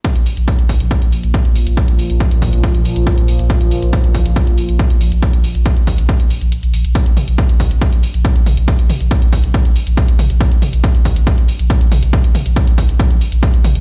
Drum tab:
HH |xxoxxxoxxxoxxxox|xxoxxxoxxxoxxxox|xxoxxxoxxxoxxxox|xxoxxxoxxxoxxxox|
T2 |----------------|----------------|----------------|----------------|
BD |o---o-o-o---o---|o---o-o-o---o---|o---o-o-o---o---|o---o-o-o-------|

HH |xxoxxxoxxxoxxxox|xxoxxxoxxxoxxxox|xxoxxxoxxxoxxxox|xxoxxxoxxxoxxxox|
T2 |--o-----------o-|--o-----------o-|--o-----------o-|--o-----------o-|
BD |o---o-o-o---o---|o---o-o-o---o---|o---o-o-o---o---|o---o-o-o---o---|